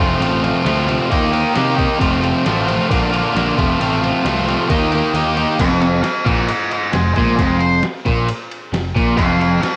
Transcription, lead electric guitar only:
5.60 A4 F5
5.82 A4 F5
6.02 A4 F5
6.26 C5 D#5
6.48 C5 D#5
6.72 C5 D#5
6.92 D#4 C5
7.13 D#4 C5
7.36 D#4 C5
7.59 C5
9.17 A4 F5
9.39 A4 F5
9.61 A4 F5

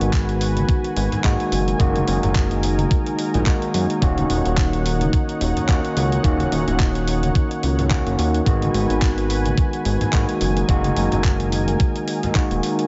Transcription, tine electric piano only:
Already playing: D#3 G#3 B3 F#4
1.24 D#3 G#3 A#3 F#4
1.79 D#3 G#3 A#3 F#4
3.46 D#3 G#3 A#3 F#4
4.01 D#3 A#3 C#4 F#4
5.68 D#3 A#3 C#4 F#4
6.23 D#3 A#3 C#4 F#4
7.90 D#3 A#3 C#4 F#4
8.46 D#3 G#3 B3 F#4
10.13 D#3 G#3 A#3 F#4
10.68 D#3 G#3 A#3 F#4
12.35 D#3 G#3 A#3 F#4

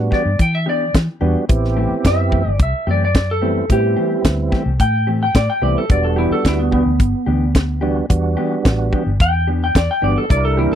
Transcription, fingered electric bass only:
0.25 G2
0.39 E3
0.95 E3
1.21 E2
1.49 A1
1.91 muted fingered electric bass stroke
2.05 F#2
2.46 G1
2.60 C2
2.87 F#2
3.70 A2
4.25 D2
4.66 C2
4.80 A2
5.35 A2
5.62 C2
5.90 E1
6.31 muted fingered electric bass stroke
6.45 D2
6.86 D2
7.00 G1
7.27 D2
8.10 E2
8.65 A1
9.06 G1
9.20 E2
9.75 E2
10.03 G1
10.30 C2
10.71 muted fingered electric bass stroke

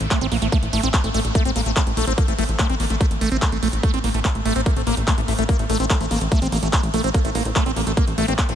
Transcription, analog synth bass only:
0.01 A1
0.21 A1
0.32 A#1
0.42 A1
0.63 A1
0.73 A1
0.83 A1
1.04 A1
1.14 A1
1.25 A1
1.45 A1
1.56 A1
1.66 A1
1.87 A1
1.97 A#1
2.08 A1
2.28 A1
2.39 A1
2.49 A1
2.70 A1
2.80 A1
2.90 A1
3.11 A1
3.21 A1
3.32 A1
3.52 A1
3.63 A#1
3.73 A1
3.94 A1
4.04 A1
4.14 A1
4.35 A1
4.45 A1
4.56 A1
4.76 A1
4.87 A1
4.97 A1
5.18 A1
5.28 A1
5.39 A1
5.59 A1
5.70 A1
5.80 A1
6.01 A1
6.11 A1
6.21 A1
6.42 A1
6.52 A1
6.63 A1
6.83 A1
6.94 A#1
7.04 A1
7.25 A1
7.35 A1
7.45 A1
7.66 A1
7.76 A1
7.87 A1
8.08 A1
8.18 A1
8.28 A1
8.49 A1

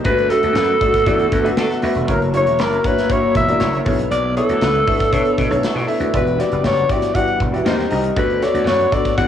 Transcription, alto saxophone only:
0.05 B4
0.30 A4
2.11 A#4
2.37 C#5
2.62 A#4
2.87 B4
3.12 C#5
3.37 E5
4.12 D5
4.37 A4
6.17 B4
6.40 D5
6.66 C#5
6.90 D5
7.15 F#5
8.19 B4
8.44 D5
8.68 C#5
8.93 D5
9.18 F#5

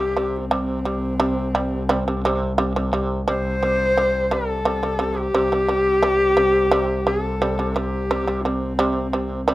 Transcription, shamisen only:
0.00 C3 G3
0.17 C3 G3
0.51 C3 G3
0.85 C3 G3
1.20 C3 G3
1.55 C3 G3
1.89 C3 G3
2.08 C3 G3
2.25 C3 G3
2.58 C3 G3
2.76 C3 G3
2.93 C3 G3
3.28 C3 G3
3.63 C3 G3
3.97 C3 G3
4.31 C3 G3
4.65 C3 G3
4.83 C3 G3
4.99 C3 G3
5.34 C3 G3
5.52 C3 G3
5.68 C3 G3
6.03 C3 G3
6.37 C3 G3
6.71 C3 G3
7.07 C3 G3
7.42 C3 G3
7.59 C3 G3
7.76 C3 G3
8.11 C3 G3
8.27 C3 G3
8.45 C3 G3
8.79 C3 G3
9.13 C3 G3
9.48 C3 G3

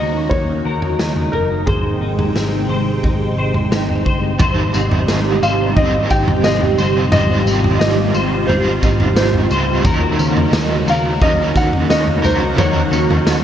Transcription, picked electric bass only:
Already playing: D#2
0.31 D#2
0.66 D#2
1.00 D#2
1.34 F#1
1.68 G#1
2.01 G#1
2.35 G#1
2.69 G#1
3.04 G#1
3.37 G#1
3.72 G#1
4.06 G1
4.40 G#1
4.75 G#1
5.09 G#1
5.43 G#1
5.77 G#1
6.10 G#1
6.44 G#1
6.79 G1
7.13 G#1
7.46 G#1
7.80 G#1
8.15 G#1
8.48 G#1
8.83 G#1
9.16 G#1
9.50 C#2
9.85 D#2
10.19 D#2
10.53 D#2
10.87 D#2
11.22 D#2
11.55 D#2
11.90 D#2
12.24 C#2
12.57 D#2
12.92 D#2
13.26 D#2

